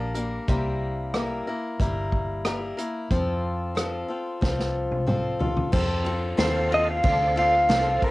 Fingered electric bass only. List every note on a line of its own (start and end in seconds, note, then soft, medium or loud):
0.00 0.38 A#1 medium
0.48 1.41 C2 medium
1.80 2.72 G1 medium
3.11 4.03 F2 medium
4.42 5.34 C2 medium
5.73 6.37 F2 medium
6.38 7.02 D#2 medium
7.05 7.68 D2 medium
7.69 8.00 C2 loud